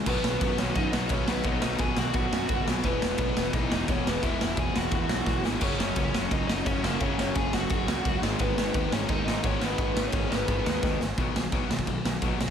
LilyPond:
<<
  \new Staff \with { instrumentName = "Lead electric guitar" } { \time 4/4 \key b \major \tempo 4 = 173 <b b'>4. <cis' cis''>8 <dis' dis''>8 <dis' dis''>8 <cis' cis''>8 <b b'>8 | <dis' dis''>8 <dis' dis''>8 <gis' gis''>8 <fis' fis''>8 <fis' fis''>4. r8 | <b b'>2 <dis' dis''>8 <dis' dis''>8 <cis' cis''>8 <b b'>8 | <e' e''>8 <e' e''>8 <gis' gis''>8 <fis' fis''>8 <fis' fis''>4. r8 |
<cis' cis''>2 <dis' dis''>8 <dis' dis''>8 <cis' cis''>8 <ais ais'>8 | <cis' cis''>8 <cis' cis''>8 <gis' gis''>8 <fis' fis''>8 <fis' fis''>4. r8 | <b b'>4. <cis' cis''>8 <dis' dis''>8 <dis' dis''>8 <cis' cis''>8 <b b'>8~ | <b b'>8. <cis' cis''>8. <b b'>2 r8 |
r1 | }
  \new Staff \with { instrumentName = "Overdriven electric guitar" } { \clef bass \time 4/4 \key b \major <b, dis fis b fis'>2~ <b, dis fis b fis'>8 <b, dis fis b fis'>8 <b, dis fis b fis'>4 | <b, dis fis b fis'>2~ <b, dis fis b fis'>8 <b, dis fis b fis'>8 <b, dis fis b fis'>4 | <e gis b e'>2~ <e gis b e'>8 <e gis b e'>8 <e gis b e'>4 | <e gis b e'>2~ <e gis b e'>8 <e gis b e'>8 <e gis b e'>4 |
<fis, cis fis ais cis'>2~ <fis, cis fis ais cis'>8 <fis, cis fis ais cis'>8 <fis, cis fis ais cis'>4 | <fis, cis fis ais cis'>2~ <fis, cis fis ais cis'>8 <fis, cis fis ais cis'>8 <fis, cis fis ais cis'>8 <gis, dis gis b dis'>8~ | <gis, dis gis b dis'>2 <gis, dis gis b dis'>8 <gis, dis gis b dis'>4 <gis, dis gis b dis'>8~ | <gis, dis gis b dis'>2 <gis, dis gis b dis'>8 <gis, dis gis b dis'>4 r8 |
<b, dis fis>8 <b, dis>8 <b, dis fis>8 <b, dis>8 <b, dis>8 <b, dis>8 <b, dis fis>8 <b, dis>8 | }
  \new Staff \with { instrumentName = "Distorted electric guitar" } { \clef bass \time 4/4 \key b \major <b, fis b>2.~ <b, fis b>8 <b, fis b>8 | <b, fis b>2.~ <b, fis b>8 <b, fis b>8 | <e, b, e>2.~ <e, b, e>8 <e, b, e>8 | <e, b, e>2.~ <e, b, e>8 <e, b, e>8 |
<fis, cis fis>2.~ <fis, cis fis>8 <fis, cis fis>8 | <fis, cis fis>2.~ <fis, cis fis>8 <gis, dis gis>8~ | <gis, dis gis>2. <gis, dis gis>8 <gis, dis gis>8~ | <gis, dis gis>2. <gis, dis gis>8 r8 |
<b, fis b>8 <b, fis>8 <b, fis b>8 <b, fis>8 <b, fis>8 <b, fis>8 <b, fis b>8 <b, fis>8 | }
  \new Staff \with { instrumentName = "Distorted electric guitar" } { \clef bass \time 4/4 \key b \major <b, fis b>2 <b, fis b>2 | <b, fis b>2 <b, fis b>2 | <e, b, e>2 <e, b, e>2 | <e, b, e>2 <e, b, e>2 |
<fis, cis fis>2 <fis, cis fis>2 | <fis, cis fis>2 <fis, cis fis>4. <gis, dis gis>8~ | <gis, dis gis>4. <gis, dis gis>2 <gis, dis gis>8~ | <gis, dis gis>4. <gis, dis gis>2 r8 |
r1 | }
  \new Staff \with { instrumentName = "Picked electric bass" } { \clef bass \time 4/4 \key b \major b,,8 b,,8 fis,8 b,,8 fis,8 b,,8 b,,8 b,,8 | b,,8 b,,8 b,,8 b,,8 b,,8 fis,8 fis,,8 b,,8 | e,,8 e,,8 b,,8 e,,8 b,,8 e,,8 e,,8 e,,8 | e,,8 e,,8 e,,8 e,,8 e,,8 b,,8 b,,8 gis,,8 |
fis,,8 fis,,8 cis,8 fis,,8 cis,8 fis,,8 fis,,8 fis,,8 | fis,,8 fis,,8 fis,,8 fis,,8 fis,,8 cis,8 cis,8 gis,,8 | gis,,8 gis,,8 dis,8 gis,,8 dis,8 gis,,8 gis,,8 gis,,8 | gis,,8 gis,,8 gis,,8 gis,,8 gis,,8 dis,8 dis,8 gis,,8 |
b,,8 b,,8 b,,8 b,,8 b,,8 b,,8 b,,8 b,,8 | }
  \new DrumStaff \with { instrumentName = "Drums" } \drummode { \time 4/4 <cymc bd>8 sn8 <cymc bd>8 sn8 <cymc bd>8 sn8 <cymc bd>8 sn8 | <cymc bd>8 sn8 <cymc bd>8 sn8 <cymc bd>8 sn8 <cymc bd>8 sn8 | <cymc bd>8 sn8 <cymc bd>8 sn8 <cymc bd>8 sn8 <cymc bd>8 sn8 | <cymc bd>8 sn8 <cymc bd>8 sn8 <cymc bd>8 sn8 <bd sn>8 sn8 |
<cymc bd>8 sn8 <cymc bd>8 sn8 <cymc bd>8 sn8 <cymc bd>8 sn8 | <cymc bd>8 sn8 <cymc bd>8 sn8 <cymc bd>8 sn8 <cymc bd>8 sn8 | <cymc bd>8 sn8 <cymc bd>8 sn8 <cymc bd>8 sn8 <cymc bd>8 sn8 | <cymc bd>8 sn8 <cymc bd>8 sn8 <cymc bd>8 sn8 <bd sn>8 sn8 |
<cymc bd>8 sn8 <cymc bd>8 sn16 bd16 <cymc bd>8 sn8 <cymc bd>8 sn8 | }
>>